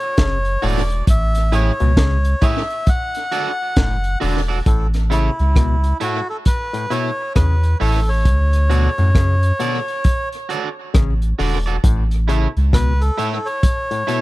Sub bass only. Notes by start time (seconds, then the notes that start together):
0.18 F#1
0.63 E1
1.08 A1
1.81 C#2
3.77 F#1
4.23 E1
4.67 A1
5.40 C#2
7.36 E2
7.81 A1
8.26 D2
8.98 F#2
10.95 A1
11.40 E1
11.84 A1
12.57 C#2